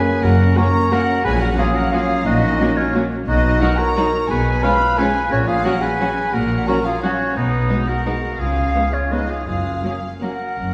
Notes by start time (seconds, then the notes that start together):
Already playing: A#3 C#4 G#4 B4 G#5
0.23 F#1 F#2 F#4 A#4 F#5
0.57 F#3 A#3 C#4 A#4 C#5 A#5
0.91 F#3 A#3 C#4 F#4 A#4 F#5
1.24 A#1 A#2 F#3 C#4 G#4 B4 G#5
1.41 F#4 A#4 F#5
1.57 F#3 A#3 C#4 F4 G#4 F5
1.74 F#4 A#4 F#5
1.92 F#3 A#3 C#4 F4 G#4 F5
2.25 A#1 A#2 D#4 F#4 D#5
2.60 F#3 A#3 C#4
2.77 C#4 F4 C#5
2.95 F#3 A#3 C#4
3.27 B1 B2 D#4 F#4 D#5
3.61 F#3 D#4 F#4 A#4 F#5
3.78 A#4 C#5 A#5
3.96 F#3 D#4 F#4
4.29 B1 B2 G#4 B4 G#5
4.63 F3 G#3 C#4 F4 B4 F5 B5
4.97 F3 G#3 C#4 F4 G#4 B4 G#5
5.31 A#1 A#2 C#4 F#4 C#5
5.47 F4 G#4 F5
5.64 F#3 C#4 F#4 A#4 F#5
5.80 G#4 B4 G#5
6.00 F#3 C#4 F#4
6.33 A#1 A#2 F#4 A#4 F#5
6.67 F#3 C#4 F#4 A#4 C#5 A#5
6.85 F4 G#4 F5
7.02 F#3 C#4 F#4 C#5
7.37 B1 B2 B3 D#4 B4
7.70 G#3 B3 D#4 F#4
7.88 F#4 A#4 F#5
8.06 G#3 B3 D#4 F#4
8.38 C#2 C#3 F4 G#4 F5
8.75 G#3 B3 C#4 B4
8.92 C#4 F4 C#5
9.11 G#3 B3 C#4 D#4 F#4 B4 D#5
9.28 F4 G#4 F5
9.45 F#1 F#2 F4 G#4 F5
9.83 F#3 A#3 C#4 A#4
10.21 F#3 A#3 C#4 F#4 A#4 F#5
10.57 F#1 F#2